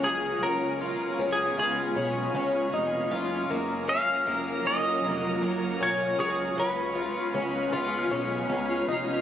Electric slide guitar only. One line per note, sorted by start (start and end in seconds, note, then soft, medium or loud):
0.04 0.44 G#4 medium
0.43 1.35 A#4 medium
1.33 1.58 G#4 medium
1.59 2.31 G#4 medium
3.89 4.66 F5 medium
4.67 5.48 D#5 medium
5.48 5.83 C#5 medium
5.83 6.19 C#5 medium
6.20 6.59 C#5 medium
6.60 8.02 B4 medium
8.02 8.85 A#4 medium